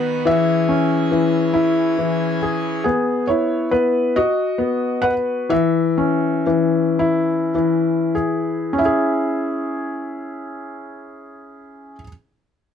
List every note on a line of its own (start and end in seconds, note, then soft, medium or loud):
0.00 0.27 D#3 medium
0.00 0.26 B3 medium
0.00 0.27 B3 medium
0.00 0.27 F#4 medium
0.00 0.27 B4 medium
0.25 1.10 E3 medium
0.25 2.83 E3 medium
0.25 2.84 C#4 soft
0.25 2.83 G#4 medium
0.25 2.38 E5 medium
0.69 2.42 C#4 medium
1.11 1.97 E3 medium
1.53 2.85 E4 medium
1.98 2.86 E3 medium
2.43 2.83 G#4 medium
2.84 3.71 B3 medium
2.84 3.25 G#4 medium
3.27 4.16 E4 medium
3.27 3.69 C#5 medium
3.71 4.15 B3 medium
3.71 4.16 B4 medium
4.16 5.50 F#4 medium
4.16 5.07 D#5 medium
4.58 5.50 B3 medium
5.02 5.50 B4 medium
5.02 5.12 F#5 medium
5.50 6.45 E3 medium
5.50 8.11 E5 medium
5.98 8.15 C#4 medium
6.47 7.53 E3 medium
6.99 8.77 E4 medium
7.55 8.79 E3 medium
8.15 8.79 G#4 medium
8.73 11.95 C#4 medium
8.78 12.01 E4 medium
8.78 12.01 E5 medium
8.85 12.08 G#4 medium